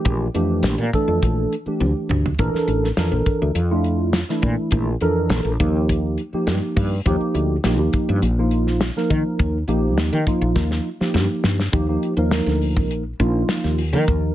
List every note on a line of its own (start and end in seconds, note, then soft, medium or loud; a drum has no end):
0.00 0.25 E3 medium
0.00 0.25 A3 medium
0.00 0.25 D4 medium
0.00 0.26 G4 medium
0.05 0.28 A#1 loud
0.05 kick loud
0.05 closed hi-hat medium
0.34 0.64 F2 medium
0.34 0.83 E3 medium
0.34 0.83 A3 medium
0.34 0.84 D4 medium
0.34 0.84 G4 medium
0.34 closed hi-hat medium
0.63 0.75 A#1 medium
0.63 snare loud
0.63 closed hi-hat medium
0.78 0.89 A#2 medium
0.93 1.54 E3 medium
0.93 1.54 A3 medium
0.93 1.54 D4 medium
0.93 1.54 A4 loud
0.93 kick medium
0.93 closed hi-hat medium
1.08 1.19 F2 medium
1.22 1.45 A#1 medium
1.22 kick medium
1.22 closed hi-hat medium
1.53 closed hi-hat medium
1.66 2.27 E3 medium
1.66 2.27 A3 medium
1.66 2.27 D4 medium
1.66 2.27 G4 medium
1.66 muted fretless electric bass stroke soft
1.80 1.92 D2 medium
1.80 high tom medium
2.09 2.32 D2 medium
2.09 mid tom medium
2.26 floor tom medium
2.39 2.51 A#1 medium
2.39 2.88 E3 medium
2.39 2.88 D4 medium
2.39 2.88 A4 medium
2.39 2.88 A#4 loud
2.39 kick loud
2.39 closed hi-hat medium
2.54 muted fretless electric bass stroke soft
2.54 snare soft
2.67 2.90 A1 medium
2.67 closed hi-hat soft
2.84 snare soft
2.97 3.13 F2 medium
2.97 3.58 E3 medium
2.97 3.58 D4 medium
2.97 3.58 A4 medium
2.97 3.58 A#4 medium
2.97 snare medium
2.97 closed hi-hat medium
3.12 3.23 A#1 medium
3.26 muted fretless electric bass stroke soft
3.26 kick medium
3.26 closed hi-hat medium
3.42 3.53 D2 medium
3.55 4.22 F2 medium
3.55 closed hi-hat medium
3.71 4.19 A3 medium
3.71 4.19 D4 medium
3.71 4.19 E4 medium
3.71 4.19 F4 medium
3.84 closed hi-hat soft
4.13 snare medium
4.13 closed hi-hat medium
4.29 4.89 E3 medium
4.29 4.90 A3 medium
4.29 4.90 D4 medium
4.29 4.90 E4 medium
4.29 snare soft
4.42 4.54 A#2 medium
4.42 kick medium
4.42 closed hi-hat medium
4.71 4.94 A#1 loud
4.71 kick loud
4.71 closed hi-hat medium
5.01 5.31 F2 medium
5.01 5.50 E3 medium
5.01 5.50 D4 medium
5.01 5.50 A4 medium
5.01 5.50 A#4 loud
5.01 closed hi-hat soft
5.29 5.42 A#1 medium
5.29 snare loud
5.29 closed hi-hat medium
5.45 5.56 A#1 medium
5.60 6.16 D#2 medium
5.60 6.20 F3 medium
5.60 6.20 A#3 medium
5.60 6.20 D#4 medium
5.60 6.20 G4 medium
5.60 kick medium
5.60 closed hi-hat medium
5.89 kick medium
5.89 closed hi-hat medium
6.18 closed hi-hat soft
6.33 6.94 F3 medium
6.33 6.94 A#3 medium
6.33 6.94 D#4 medium
6.33 6.94 G4 medium
6.33 muted fretless electric bass stroke soft
6.47 6.59 G2 medium
6.47 snare loud
6.47 closed hi-hat medium
6.76 6.99 G2 medium
6.76 kick medium
6.76 open hi-hat medium
7.05 7.17 D#2 medium
7.05 7.55 F3 medium
7.05 7.55 A#3 medium
7.05 7.55 D#4 medium
7.05 7.55 G4 loud
7.05 kick loud
7.05 closed hi-hat medium
7.21 muted fretless electric bass stroke soft
7.34 7.57 D2 medium
7.34 closed hi-hat medium
7.64 7.79 A#1 medium
7.64 8.25 F3 medium
7.64 8.25 A#3 medium
7.64 8.25 D#4 medium
7.64 8.25 G4 medium
7.64 snare medium
7.64 closed hi-hat medium
7.79 7.90 D#2 medium
7.93 muted fretless electric bass stroke soft
7.93 kick medium
7.93 closed hi-hat medium
8.09 8.20 G2 medium
8.22 8.89 A#1 medium
8.22 closed hi-hat medium
8.38 8.86 F3 medium
8.38 8.86 A#3 medium
8.38 8.86 D#4 medium
8.38 8.87 F4 medium
8.51 closed hi-hat soft
8.67 snare soft
8.81 snare loud
8.81 closed hi-hat medium
8.96 9.57 F3 medium
8.96 9.57 A#3 medium
8.96 9.57 D#4 medium
8.96 9.57 A#4 medium
8.96 snare soft
9.10 9.22 D#3 medium
9.10 kick medium
9.10 closed hi-hat medium
9.39 9.62 D#2 medium
9.39 kick loud
9.39 closed hi-hat medium
9.68 9.97 A#1 medium
9.68 10.17 F3 medium
9.68 10.17 A#3 medium
9.68 10.17 D#4 medium
9.68 10.17 G4 loud
9.68 closed hi-hat medium
9.97 10.09 D#2 medium
9.97 snare loud
9.97 closed hi-hat medium
10.13 10.24 D#3 medium
10.26 10.87 F3 medium
10.26 10.88 A#3 medium
10.26 10.88 D#4 medium
10.26 10.88 F4 medium
10.26 kick medium
10.26 closed hi-hat medium
10.41 10.53 A#1 medium
10.55 10.78 D#2 medium
10.55 kick medium
10.55 snare medium
10.71 snare medium
11.00 11.61 F3 medium
11.00 11.61 A#3 medium
11.00 11.61 D#4 medium
11.00 11.61 G4 medium
11.00 muted fretless electric bass stroke soft
11.00 snare medium
11.14 11.26 G2 medium
11.14 snare medium
11.44 11.66 G2 medium
11.44 snare medium
11.60 snare medium
11.72 11.96 D#2 medium
11.72 11.86 F3 medium
11.72 11.86 A#3 medium
11.72 11.86 D#4 medium
11.72 11.86 G4 medium
11.72 kick loud
11.72 closed hi-hat medium
11.89 12.13 F3 medium
11.89 12.13 A#3 medium
11.89 12.13 D#4 medium
11.89 12.13 G4 medium
12.03 closed hi-hat soft
12.17 12.40 D#2 medium
12.17 13.02 F3 medium
12.17 13.02 A#3 medium
12.17 13.02 D#4 medium
12.17 13.02 A#4 medium
12.31 snare loud
12.31 closed hi-hat medium
12.46 12.89 D2 medium
12.46 snare soft
12.62 open hi-hat medium
12.77 kick medium
12.89 13.12 A#1 medium
12.89 closed hi-hat medium
13.19 13.42 A#1 medium
13.19 13.80 F3 medium
13.19 13.80 A#3 medium
13.19 13.80 D#4 medium
13.19 13.80 F4 medium
13.19 kick medium
13.19 closed hi-hat soft
13.49 snare medium
13.49 closed hi-hat medium
13.64 13.94 D#2 medium
13.64 snare soft
13.78 open hi-hat medium
13.93 14.04 D#3 medium
13.93 14.35 F3 medium
13.93 14.35 A#3 medium
13.93 14.35 D#4 medium
13.93 14.35 A#4 medium
14.08 14.30 D#2 medium
14.08 kick loud
14.08 closed hi-hat medium